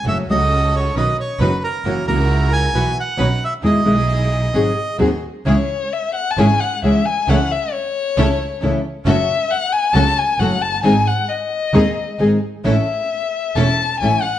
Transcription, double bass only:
\new Staff \with { instrumentName = "Double bass" } { \clef bass \time 4/4 \key gis \phrygian \tempo 4 = 134 fis,,8 cis,4. b,,8 r8 fis,,8 r8 | fis,,8 cis,4. b,,8 r8 b,,8 r8 | e,8 b,,4. gis,,8 r8 dis,8 r8 | \key cis \minor cis,8 r4. gis,,8 r8 cis,8 r8 |
cis,8 r4. cis,8 r8 cis,8 r8 | fis,,8 r4. cis,8 r8 fis,,8 fis,,8 | gis,,8 r4. dis,8 r8 gis,,8 r8 | a,,8 r4. e,,8 r8 a,,8 r8 | }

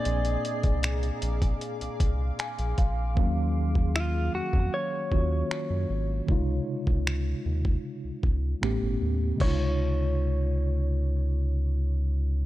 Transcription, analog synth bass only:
\new Staff \with { instrumentName = "Analog synth bass" } { \clef bass \time 4/4 \key des \major \tempo 4 = 77 bes,,8 r16 c,8. bes,,8 r16 c,16 c,8 r16 bes,,16 bes,,8 | ees,4. f,16 f,16 r8 ees,8 r16 ges,16 aes,,8 | des,8 r16 des,8. ees,8 r16 des,16 des,8 a,,16 g,,16 ees,8 | des,1 | }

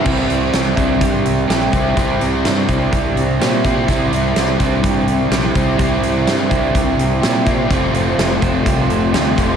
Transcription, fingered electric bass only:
\new Staff \with { instrumentName = "Fingered electric bass" } { \clef bass \time 4/4 \key c \major \tempo 4 = 125 c,8 c,8 c,8 c,8 g,8 c,8 bes,,8 c,8 | c,8 c,8 g,8 c,8 c,8 c,8 bes,4 | c,8 c,8 c,8 c,8 g,8 c,8 bes,,8 c,8 | c,8 c,8 g,8 c,8 c,8 c,8 bes,4 |
f,,8 f,,8 f,,8 f,,8 c,8 f,,8 d,8 f,,8 | }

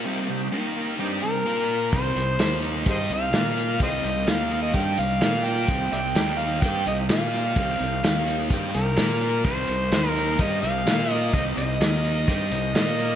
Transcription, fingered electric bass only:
\new Staff \with { instrumentName = "Fingered electric bass" } { \clef bass \time 4/4 \key c \minor \tempo 4 = 128 r1 | c,8 c,8 ees,4 g,8 c,8 bes,4 | c,8 c,8 ees,4 g,8 c,8 bes,4 | c,8 c,8 ees,4 g,8 c,8 bes,4 |
c,8 c,8 ees,4 g,8 c,8 bes,4 | c,8 c,8 ees,4 g,8 c,8 bes,4 | c,8 c,8 ees,4 g,8 c,8 bes,4 | }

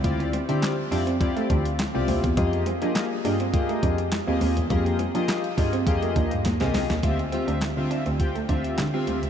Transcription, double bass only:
\new Staff \with { instrumentName = "Double bass" } { \clef bass \time 4/4 \key f \lydian \tempo 4 = 103 d,8 r16 d8 r16 f,8. r16 d,8 r16 c,16 ees,16 e,16 | f,8 r16 f8 r16 g,8. r16 f,8 r16 ees,16 ees,16 e,16 | f,8 r16 f8 r16 g,8 f,16 r16 ees,16 g,16 ees,16 c,16 r16 ees,16 | d,8 r16 d,16 d16 d16 r16 d,16 r8 d,8 d16 r16 d,16 cis,16 | }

